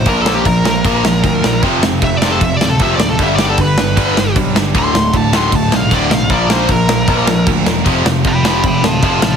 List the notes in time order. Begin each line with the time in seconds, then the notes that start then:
0.06 A#1 A#2 F3 A#3 D4 F4 A#4, kick, crash
0.22 A4
0.26 A#2 F3 A#3, snare
0.34 G4
0.45 A#1 A#2 F3 A#4, kick, crash
0.64 A#2 F3 A#3 D4 F4 A#4, snare
0.85 A#1 A#2 F3 A#3, kick, crash
1.04 A#2 F3, snare
1.24 D2 A#2 F3 A#3 D4 F4 A#4, kick, crash
1.43 A#1 A#2 F3, snare
1.63 F1 F2 C3 F3 A3 C4, kick, crash
1.67 F4
1.83 F1 F2 C3, snare
2.02 F1 F2 C3 E5, kick, crash
2.17 D5
2.22 F2 C3 F3 A3 C4 F4, snare
2.31 A4
2.41 F1 F2 C3 E5, kick, crash
2.57 D5
2.61 D1 F2 C3, snare
2.70 A4
2.79 F1 F2 C3 F3 A3 C4 E5, kick, crash
2.84 F4
2.96 D5, snare
3.00 D1 F2 C3
3.10 A4
3.19 G1 G2 D3 G3 B3 D4 G4, kick, crash
3.23 E5
3.36 D5, snare
3.41 G2 D3 G3
3.49 A4
3.58 G1 G2 D3, kick, crash
3.62 B4
3.78 G2 D3 G3 B3 D4 G4, snare
3.97 G1 G2 D3 G3, kick, crash
4.17 G2 D3, snare
4.36 B1 G2 D3 G3 B3 D4 G4, kick, crash
4.55 G1 G2 D3, snare
4.75 D1 D2 A2 D3 A3 F#4, kick, crash
4.79 C6
4.95 D1 D2 A2, snare
5.13 D1 D2 A2 A5, kick, crash
5.32 D2 A2 D3 A3 F#4, snare
5.37 C6
5.51 D1 D2 A2, kick, crash
5.56 A5
5.71 B1 D2 A2, snare
5.76 F5
5.91 D1 D2 A2 D3 A3 F#4, kick, crash
5.95 D5
6.11 B1 D2 A2 F5, snare
6.29 A#1 A#2 F3 A#3 D4 F4 A#4 D5, kick, crash
6.50 A#2 F3 A#3 C5, snare
6.69 A#1 A#2 F3 A#4, kick, crash
6.88 A#2 F3 A#3 D4 F4 A#4, snare
7.08 A#1 A#2 F3 A#3, kick, crash
7.27 A#2 F3, snare
7.46 D2 A#2 F3 A#3 D4 F4 A#4, kick, crash
7.65 E1 A#2 F3, snare
7.84 F1 F2 C3 F3 A3 C4, kick, crash
7.89 F4
8.04 F1 F2 C3, snare
8.24 F1 F2 C3, kick, crash
8.28 G5 B5
8.44 F2 C3 F3 A3 C4 F4 G5 B5, snare
8.63 F1 F2 C3 G5, kick, crash
8.67 B5
8.82 D1 F2 C3 F5 A5, snare
9.02 F1 F2 C3 F3 A3 C4 F4 F5 A5, kick, crash
9.22 A1 F2 C3 F5 A5, snare